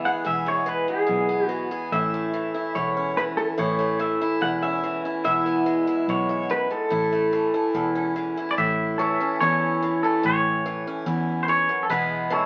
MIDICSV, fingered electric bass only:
0, 0, Header, 1, 2, 480
1, 0, Start_track
1, 0, Key_signature, 3, "major"
1, 0, Tempo, 416089
1, 290, Time_signature, 4, 2, 24, 8
1, 14370, End_track
2, 0, Start_track
2, 0, Title_t, "Fingered electric bass"
2, 0, Program_c, 0, 33
2, 303, Note_on_c, 0, 28, 78
2, 991, Note_off_c, 0, 28, 0
2, 1259, Note_on_c, 0, 35, 72
2, 1949, Note_off_c, 0, 35, 0
2, 2214, Note_on_c, 0, 33, 76
2, 2906, Note_off_c, 0, 33, 0
2, 3181, Note_on_c, 0, 28, 71
2, 3871, Note_off_c, 0, 28, 0
2, 4137, Note_on_c, 0, 33, 82
2, 4829, Note_off_c, 0, 33, 0
2, 5099, Note_on_c, 0, 28, 69
2, 5790, Note_off_c, 0, 28, 0
2, 6059, Note_on_c, 0, 28, 79
2, 6750, Note_off_c, 0, 28, 0
2, 7011, Note_on_c, 0, 35, 78
2, 7705, Note_off_c, 0, 35, 0
2, 7975, Note_on_c, 0, 33, 83
2, 8667, Note_off_c, 0, 33, 0
2, 8932, Note_on_c, 0, 28, 70
2, 9624, Note_off_c, 0, 28, 0
2, 9897, Note_on_c, 0, 33, 84
2, 10587, Note_off_c, 0, 33, 0
2, 10858, Note_on_c, 0, 40, 78
2, 11547, Note_off_c, 0, 40, 0
2, 11820, Note_on_c, 0, 33, 89
2, 12507, Note_off_c, 0, 33, 0
2, 12762, Note_on_c, 0, 40, 81
2, 13455, Note_off_c, 0, 40, 0
2, 13728, Note_on_c, 0, 28, 90
2, 14370, Note_off_c, 0, 28, 0
2, 14370, End_track
0, 0, End_of_file